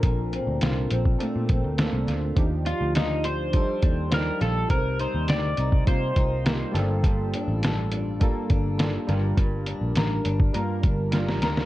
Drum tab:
HH |x-x-x-x-x-x-x-x-|x-x-x-x-x-x-x-x-|x-x-x-x-x-x-x-x-|x-x-x-x-x-x-x-x-|
SD |----o-------o-o-|----o-------o-o-|----o-------o-o-|----o-------o-o-|
BD |o------o--o-----|o-------o-o-----|o------oo-o-----|o-------o-o-----|

HH |x-x-x-x-x-x-x-x-|
SD |----o-------oooo|
BD |o------o--o-----|